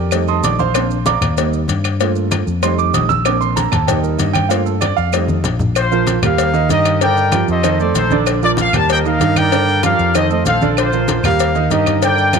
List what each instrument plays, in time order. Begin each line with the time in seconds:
Already playing: fingered electric bass F2, grand piano G4 A#4 D5 G5
0.11 grand piano G3 A3 D#4, cowbell, high conga, claves, maracas
0.28 grand piano D#5 A5 C6 D#6, high conga, maracas
0.44 fingered electric bass A#1, grand piano D5 D6, cowbell, high conga, maracas
0.59 grand piano C5 F5 C6, high conga, maracas
0.74 grand piano A#3 C4 D4, cowbell, high conga, claves, maracas
0.90 high conga, maracas
1.06 grand piano D5 F5 A#5 D6, cowbell, high conga, maracas
1.21 fingered electric bass D#2, cowbell, high conga, low conga, claves, maracas
1.37 grand piano G3 A#3 D#4, cowbell, high conga, maracas
1.53 high conga, maracas
1.68 fingered electric bass G2, cowbell, high conga, maracas
1.84 cowbell, claves, maracas
2.00 grand piano A3 A#3 F4, cowbell, high conga, maracas
2.15 high conga, maracas
2.31 cowbell, high conga, claves, maracas
2.47 fingered electric bass F2, maracas
2.62 grand piano G3 A3 D#4 C6, cowbell, high conga, claves, maracas
2.78 grand piano D6, high conga, maracas
2.94 fingered electric bass A#1, grand piano D#6, cowbell, high conga, maracas
3.09 grand piano E6, high conga, maracas
3.25 grand piano A#3 C4 D4 D6, cowbell, high conga, claves, maracas
3.41 grand piano C6, high conga, maracas
3.56 grand piano A#5, cowbell, high conga, maracas
3.72 fingered electric bass D#2, grand piano A5, cowbell, high conga, low conga, claves, maracas
3.87 grand piano G3 A#3 D#4 G5, cowbell, high conga, low conga, maracas
4.03 grand piano A#4, high conga, maracas
4.18 fingered electric bass G2, grand piano D#5, cowbell, high conga, maracas
4.33 grand piano G5, cowbell, high conga, claves, maracas
4.49 grand piano A3 A#3 F4 F5, cowbell, high conga, maracas
4.66 grand piano A4, high conga, maracas
4.81 grand piano D5, cowbell, high conga, claves, maracas
4.97 fingered electric bass F2, grand piano F5, maracas
5.13 grand piano G3 A3 D#4 D#5, cowbell, high conga, claves, maracas
5.28 high conga, maracas
5.44 fingered electric bass A#1, cowbell, low conga, maracas
5.59 low conga, maracas
5.75 trumpet section F4 C5, cowbell, high conga, claves, maracas
5.91 grand piano F3 F4 A#4, high conga, maracas
6.07 cowbell, high conga, maracas
6.22 fingered electric bass D#2, grand piano G3 G4 A#4, trumpet section A#4 F5, cowbell, high conga, low conga, claves, maracas
6.38 cowbell, high conga, maracas
6.53 grand piano D#3 D#4 D#5, high conga, maracas
6.69 fingered electric bass G2, grand piano D#3 D#4 D#5, trumpet section G4 A#4 D#5, cowbell, high conga, maracas
6.85 cowbell, claves, maracas
7.01 grand piano D3 D4 D5, trumpet section A#4 D5 G5, cowbell, high conga, maracas
7.16 high conga, maracas
7.32 grand piano F3 F4 G4, cowbell, high conga, claves, maracas
7.48 fingered electric bass F2, trumpet section A4 C5 D#5, maracas
7.63 grand piano D#3 D#4 D#5, cowbell, high conga, claves, maracas
7.79 grand piano A3 A4 C5, trumpet section D5, high conga, maracas
7.95 fingered electric bass A#1, trumpet section D#4 A4 C5, cowbell, high conga, maracas
8.10 grand piano D3 D4 D5, high conga, maracas
8.27 cowbell, claves, maracas
8.42 grand piano F3 F4 A#4, trumpet section D5, high conga, maracas
8.57 trumpet section F5, cowbell, high conga, maracas
8.73 fingered electric bass D#2, grand piano G3 G4 A#4, trumpet section A5, cowbell, high conga, low conga, claves, maracas
8.89 trumpet section A#4 D#5 G5, cowbell, high conga, maracas
9.04 grand piano D#3 D#4 D#5, trumpet section A#4 F5, high conga, maracas
9.20 fingered electric bass G2, grand piano D#3 D#4 D#5, cowbell, high conga, maracas
9.36 trumpet section A#4 D5 G5, cowbell, high conga, claves, maracas
9.51 grand piano D3 D4 D5, cowbell, high conga, maracas
9.67 high conga, maracas
9.83 grand piano F3 F4 G4, trumpet section A#4 D5 F5, cowbell, high conga, claves, maracas
9.99 fingered electric bass F2, maracas
10.14 grand piano D#3 D#4 D#5, trumpet section A4 C5 D#5, cowbell, high conga, claves, maracas
10.30 grand piano A3 A4 C5, trumpet section D#5, high conga, maracas
10.46 fingered electric bass A#1, trumpet section A4 C5 F5, cowbell, high conga, maracas
10.62 grand piano D3 D4 D5, high conga, maracas
10.77 trumpet section F4 C5, cowbell, claves, maracas
10.92 grand piano F3 F4 A#4, high conga, maracas
11.08 cowbell, high conga, maracas
11.23 fingered electric bass D#2, grand piano G3 G4 A#4, trumpet section A#4 F5, cowbell, high conga, low conga, claves, maracas
11.39 cowbell, high conga, maracas
11.55 grand piano D#3 D#4 D#5, high conga, maracas
11.71 fingered electric bass G2, grand piano D#3 D#4 D#5, trumpet section G4 A#4 D#5, cowbell, high conga, maracas
11.86 cowbell, high conga, claves, maracas
12.02 grand piano D3 D4 D5, trumpet section A#4 D5 G5, cowbell, high conga, maracas
12.18 high conga, maracas
12.33 grand piano F3 F4 G4, cowbell, high conga, claves, maracas